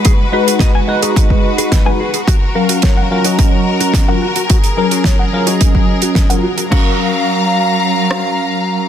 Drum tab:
CC |----------------|----------------|----------------|x---------------|
HH |x--xx--xx--xx--x|x--xx--xx--xx--x|xx-xx--xx--xxx-x|----------------|
SD |----o-------o---|----o-------o---|----o-------o---|----------r-----|
BD |o---o---oo--o---|o---o---o---o---|o---o---oo--o---|o---------------|